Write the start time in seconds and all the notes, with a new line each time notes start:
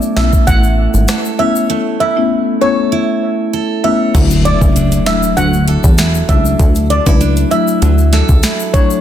Already playing: A3 B3 C#4 E4
0.02 shaker
0.16 B1 A3 B3 C#4 E4 A4 E5, finger snap, snare
0.33 kick, shaker
0.47 A1 E4 F#5, kick, closed hi-hat, shaker
0.64 shaker
0.94 G#1, shaker
1.08 A4, finger snap, cross-stick, snare, closed hi-hat, shaker
1.25 shaker
1.39 A3 B3 C#4 E4 C#5 E5
1.56 shaker
1.70 A3
2.00 E4 E5
2.16 A3 B3 C#4 E4
2.61 A3 B3 C#4 E4 A4 C#5
2.92 E4
3.53 A4
3.84 A3 B3 C#4 E4 C#5 E5
4.14 D2 F#3 A3 D4 E4, kick, closed hi-hat, crash, impact, shaker
4.30 closed hi-hat, shaker
4.45 E4 D5, closed hi-hat
4.61 C#2 F#3 A3 D4 E4, kick, shaker
4.76 D4, closed hi-hat, shaker
4.92 closed hi-hat, shaker
5.06 F#3 A3 D4 E4 E5, finger snap, snare, closed hi-hat, shaker
5.23 shaker
5.37 D2 F#3 F#5, closed hi-hat, shaker
5.53 shaker
5.68 A4, closed hi-hat
5.84 E2, kick, shaker
5.98 E4, finger snap, snare, closed hi-hat, shaker
6.15 shaker
6.29 C#2 F#3 A3 D4 E4 E5, kick, closed hi-hat, shaker
6.45 shaker
6.59 D2, kick, closed hi-hat, shaker
6.75 closed hi-hat, shaker
6.90 D4 D5, closed hi-hat
7.06 C#2 F#3 A3 D4 E4, kick, high timbale, shaker
7.21 D4, closed hi-hat, shaker
7.37 closed hi-hat, shaker
7.51 F#3 A3 D4 E4 E5, closed hi-hat, shaker
7.68 shaker
7.82 D2 F#3, closed hi-hat, shaker
7.98 shaker
8.12 A4, snare, closed hi-hat
8.29 C#2, kick, shaker
8.43 E4, finger snap, snare, closed hi-hat, shaker
8.60 shaker
8.73 F#3 A3 D4 E4 C#5, kick, closed hi-hat, shaker
8.91 shaker